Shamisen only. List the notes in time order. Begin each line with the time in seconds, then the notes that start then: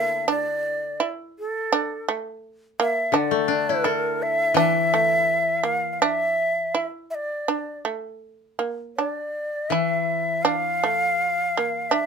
Already playing: A#3
0.28 D4
1.00 E4
1.72 D4
2.08 A3
2.80 A#3
3.14 D4
3.84 E4
4.57 D4
4.94 A3
5.63 A#3
6.02 D4
6.75 E4
7.48 D4
7.85 A3
8.59 A#3
8.98 D4
9.72 E4
10.45 D4
10.84 A3
11.57 A#3
11.91 D4